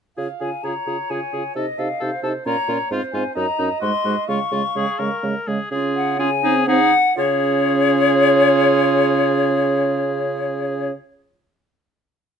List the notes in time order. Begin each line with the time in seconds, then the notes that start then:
0.17 C#3 F4 G#4 F5
0.40 C#3 F4 G#4 G#5
0.63 C#3 F4 G#4 C#5 A#5
0.86 C#3 F4 G#4
1.10 C#3 F4 G#4 G#5
1.33 C#3 F4 G#4
1.56 C3 D#4 A4 D#5
1.78 C3 D#4 A4 F5
2.00 C3 D#4 A4 C5
2.23 C3 D#4 A4 A5
2.46 A#2 C#4 F4 C#5 A#5
2.68 A#2 C#4 F4
2.91 G#2 C4 F4 C5
3.13 G#2 C4 F4 G#5
3.35 F#2 C#4 D#4 D#5 A#5
3.58 F#2 C#4 D#4
3.81 G#2 G#3 F#4 C6
4.05 G#2 G#3 F#4
4.28 C#3 G#3 F4 F5 C#6
4.52 C#3 G#3 F4
4.75 C#3 G#3 G#4
4.99 C#3 G#3 A#4
5.23 C#3 G#3
5.47 C#3 G#3 G#4
5.71 C#3 C#4 F4 G#4
5.96 F#5
6.19 C#4 F4 G#4 G#5
6.43 C4 D#4 G#4
6.67 C4 D#4 G#4 F#5
7.17 C#3 C#4 F4 G#4 C#5